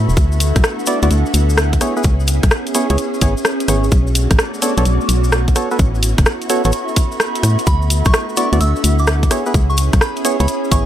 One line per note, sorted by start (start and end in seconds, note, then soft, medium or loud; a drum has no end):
0.00 3.88 B3 medium
0.00 0.13 C#4 medium
0.00 3.88 E4 medium
0.00 0.13 F#4 medium
0.00 1.81 A4 medium
0.00 4.59 E5 medium
0.00 0.79 B5 medium
0.00 0.84 C#6 medium
0.09 0.16 E1 loud
0.09 shaker soft
0.17 0.53 D2 loud
0.17 1.79 A3 medium
0.17 1.81 D4 medium
0.17 1.79 F#4 medium
0.17 kick loud
0.17 closed hi-hat medium
0.17 shaker medium
0.32 shaker soft
0.39 2.67 F#5 medium
0.39 open hi-hat loud
0.39 shaker loud
0.56 0.63 B1 loud
0.56 kick loud
0.56 cross-stick medium
0.56 closed hi-hat medium
0.56 shaker soft
0.64 cross-stick loud
0.64 shaker soft
0.79 shaker soft
0.86 0.99 B3 medium
0.86 0.99 E4 medium
0.86 0.99 F#4 medium
0.86 0.99 D5 medium
0.86 open hi-hat medium
0.86 shaker medium
1.02 1.10 D2 loud
1.02 1.09 B3 medium
1.02 1.09 E4 medium
1.02 1.09 F#4 medium
1.02 1.09 D5 loud
1.02 closed hi-hat medium
1.02 shaker soft
1.11 1.24 D2 medium
1.11 closed hi-hat medium
1.11 shaker medium
1.26 shaker soft
1.34 1.79 D2 medium
1.34 open hi-hat loud
1.34 shaker medium
1.50 shaker soft
1.57 cross-stick loud
1.57 shaker medium
1.73 kick medium
1.73 closed hi-hat medium
1.73 shaker soft
1.81 1.94 B3 medium
1.81 7.63 C#4 medium
1.81 3.92 C#4 medium
1.81 1.94 E4 medium
1.81 3.90 G#4 medium
1.81 1.94 G#4 medium
1.81 1.94 C#5 medium
1.81 cross-stick soft
1.81 open hi-hat medium
1.81 shaker medium
1.97 2.03 B3 medium
1.97 2.03 E4 medium
1.97 2.03 G#4 medium
1.97 2.03 B4 medium
1.97 shaker soft
2.03 2.40 C#2 loud
2.03 kick loud
2.03 closed hi-hat medium
2.03 shaker medium
2.14 4.59 G#4 medium
2.20 shaker soft
2.28 3.92 C#5 medium
2.28 open hi-hat loud
2.28 shaker medium
2.43 2.50 B1 medium
2.43 kick loud
2.43 cross-stick medium
2.43 closed hi-hat medium
2.43 shaker soft
2.51 cross-stick loud
2.51 shaker medium
2.67 closed hi-hat soft
2.67 shaker soft
2.75 2.87 B3 medium
2.75 2.87 E4 medium
2.75 2.87 G#4 medium
2.75 2.87 C#5 loud
2.75 open hi-hat medium
2.75 shaker loud
2.90 2.97 C#2 loud
2.90 2.96 B3 loud
2.90 2.96 E4 medium
2.90 2.96 G#4 medium
2.90 2.97 C#5 loud
2.90 closed hi-hat medium
2.90 shaker soft
2.98 closed hi-hat medium
2.98 shaker soft
3.14 shaker soft
3.21 3.35 G#1 medium
3.21 3.34 B3 medium
3.21 3.34 E4 medium
3.21 3.34 G#4 medium
3.21 3.34 C#5 medium
3.21 kick loud
3.21 open hi-hat loud
3.21 shaker medium
3.37 shaker soft
3.45 cross-stick loud
3.45 shaker medium
3.60 closed hi-hat medium
3.60 shaker soft
3.68 3.90 G#1 medium
3.68 3.86 B3 medium
3.68 3.86 E4 medium
3.68 3.86 G#4 medium
3.68 3.86 C#5 medium
3.68 cross-stick medium
3.68 open hi-hat medium
3.68 shaker medium
3.84 shaker soft
3.92 4.28 B1 loud
3.92 5.54 A3 medium
3.92 6.43 B3 medium
3.92 5.54 D4 medium
3.92 9.27 F#4 medium
3.92 kick loud
3.92 closed hi-hat medium
3.92 shaker medium
4.07 shaker soft
4.13 6.43 F#4 medium
4.13 5.56 D6 medium
4.13 open hi-hat loud
4.13 shaker medium
4.31 4.38 A1 medium
4.31 kick loud
4.31 cross-stick medium
4.31 closed hi-hat medium
4.31 shaker soft
4.39 cross-stick loud
4.39 shaker soft
4.54 shaker soft
4.62 4.74 B3 medium
4.62 4.74 D4 medium
4.62 4.74 A4 medium
4.62 4.74 C#5 medium
4.62 open hi-hat medium
4.62 shaker medium
4.77 4.85 B1 loud
4.77 4.84 B3 medium
4.77 4.84 D4 medium
4.77 4.84 A4 medium
4.77 4.84 C#5 loud
4.77 closed hi-hat medium
4.77 shaker soft
4.85 4.99 B1 medium
4.85 closed hi-hat medium
4.85 shaker soft
5.01 shaker soft
5.09 5.54 B1 medium
5.09 open hi-hat loud
5.09 shaker medium
5.24 shaker soft
5.32 cross-stick loud
5.32 shaker medium
5.48 kick medium
5.48 closed hi-hat medium
5.48 shaker soft
5.56 10.86 B3 medium
5.56 5.69 B3 medium
5.56 7.65 E4 medium
5.56 5.69 F#4 medium
5.56 5.69 A4 medium
5.56 9.31 A4 medium
5.56 5.69 C#5 medium
5.56 cross-stick soft
5.56 open hi-hat medium
5.56 shaker medium
5.71 5.78 B3 medium
5.71 5.78 F#4 medium
5.71 5.78 A4 medium
5.71 5.78 B4 medium
5.71 shaker soft
5.79 6.15 A1 loud
5.79 kick loud
5.79 closed hi-hat medium
5.79 shaker medium
5.95 8.34 C#6 medium
5.95 shaker soft
6.01 10.86 E5 medium
6.01 open hi-hat loud
6.01 shaker medium
6.18 6.25 F#1 loud
6.18 8.34 B5 medium
6.18 kick loud
6.18 cross-stick medium
6.18 closed hi-hat medium
6.18 shaker soft
6.26 cross-stick loud
6.26 shaker medium
6.42 closed hi-hat soft
6.42 shaker soft
6.50 6.62 B3 medium
6.50 6.62 F#4 medium
6.50 6.62 A4 medium
6.50 6.62 C#5 loud
6.50 open hi-hat medium
6.50 shaker medium
6.64 6.72 A1 loud
6.64 6.71 B3 loud
6.64 6.71 F#4 medium
6.64 6.71 A4 medium
6.64 6.71 C#5 loud
6.64 closed hi-hat medium
6.64 shaker soft
6.72 closed hi-hat medium
6.72 shaker medium
6.88 shaker soft
6.96 kick loud
6.96 open hi-hat loud
6.96 shaker medium
7.12 shaker soft
7.20 cross-stick loud
7.20 shaker medium
7.35 closed hi-hat medium
7.35 shaker soft
7.43 7.57 A2 loud
7.43 cross-stick soft
7.43 open hi-hat loud
7.43 shaker medium
7.59 closed hi-hat soft
7.59 shaker soft
7.67 8.03 D2 loud
7.67 9.29 A3 medium
7.67 9.31 D4 medium
7.67 10.86 E4 medium
7.67 7.88 B5 loud
7.67 kick loud
7.67 closed hi-hat medium
7.67 shaker medium
7.82 shaker soft
7.90 open hi-hat loud
7.90 shaker loud
8.05 8.13 B1 loud
8.05 8.24 C#6 loud
8.05 kick loud
8.05 cross-stick medium
8.05 closed hi-hat medium
8.05 shaker soft
8.14 cross-stick loud
8.14 shaker medium
8.29 shaker soft
8.37 8.49 B3 medium
8.37 8.49 E4 medium
8.37 8.49 F#4 medium
8.37 8.49 D5 medium
8.37 8.54 C#6 loud
8.37 open hi-hat loud
8.37 shaker medium
8.42 10.18 F#5 medium
8.53 8.60 D2 loud
8.53 8.59 B3 medium
8.53 8.59 E4 medium
8.53 8.59 F#4 medium
8.53 8.59 D5 loud
8.53 closed hi-hat medium
8.53 shaker soft
8.60 8.74 D2 medium
8.60 8.81 E6 medium
8.60 closed hi-hat medium
8.60 shaker medium
8.76 shaker soft
8.84 9.29 D2 medium
8.84 open hi-hat loud
8.84 shaker loud
8.99 9.18 D6 medium
8.99 shaker soft
9.07 cross-stick loud
9.07 shaker medium
9.23 kick medium
9.23 closed hi-hat medium
9.23 shaker soft
9.31 9.44 B3 medium
9.31 10.86 C#4 medium
9.31 9.44 E4 medium
9.31 9.44 G#4 medium
9.31 10.86 G#4 medium
9.31 9.44 C#5 medium
9.31 cross-stick medium
9.31 open hi-hat loud
9.31 shaker medium
9.45 9.53 B3 medium
9.45 9.53 E4 medium
9.45 10.86 G#4 medium
9.45 9.53 G#4 medium
9.45 9.53 B4 medium
9.45 10.86 C#5 medium
9.45 shaker soft
9.54 9.90 C#2 loud
9.54 kick loud
9.54 closed hi-hat medium
9.54 shaker medium
9.70 9.88 C#6 loud
9.70 shaker soft
9.77 open hi-hat loud
9.77 shaker loud
9.93 10.00 B1 loud
9.93 kick loud
9.93 cross-stick medium
9.93 closed hi-hat medium
9.93 shaker soft
10.01 10.22 B5 medium
10.01 cross-stick loud
10.01 shaker medium
10.16 closed hi-hat soft
10.16 shaker soft
10.25 10.37 B3 medium
10.25 10.37 E4 medium
10.25 10.37 G#4 medium
10.25 10.37 C#5 loud
10.25 open hi-hat medium
10.25 shaker loud
10.40 10.47 C#2 loud
10.40 10.46 B3 loud
10.40 10.46 E4 medium
10.40 10.46 G#4 medium
10.40 10.46 C#5 loud
10.40 10.58 B5 loud
10.40 closed hi-hat medium
10.40 shaker soft
10.48 closed hi-hat medium
10.48 shaker medium
10.64 shaker soft
10.71 10.85 G#1 medium
10.71 10.84 B3 medium
10.71 10.84 E4 medium
10.71 10.84 G#4 medium
10.71 10.84 C#5 medium
10.71 10.86 C#6 loud
10.71 kick loud
10.71 open hi-hat loud
10.71 shaker medium